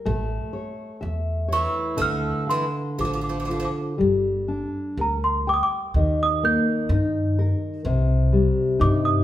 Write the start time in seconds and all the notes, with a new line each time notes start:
0.05 A1 A3
0.53 C#5
1.01 E2 E5
1.48 C#5
1.52 E3 C#6
1.97 D2 D3 A3
2.02 F6
2.47 E3 F5 C6
2.98 A1 F3 A4 D6
3.05 F3
3.13 F3 D6
3.21 F3 D6
3.29 F3 D6
3.40 F3 D6
3.45 F3 D6
3.49 F3 F4
3.56 F3 D6
3.65 D6
3.98 G1 G3
4.48 D4
4.97 D2 A#4 A#5
5.24 C6
5.47 G5 D6
5.54 D#6
5.63 D6
5.94 D#2 D#3
6.23 D#6
6.43 A#3 G6
6.89 G2 D#4
7.39 A#4
7.85 C2 C3
8.32 G3
8.79 G2 D#4 D6
9.05 D#6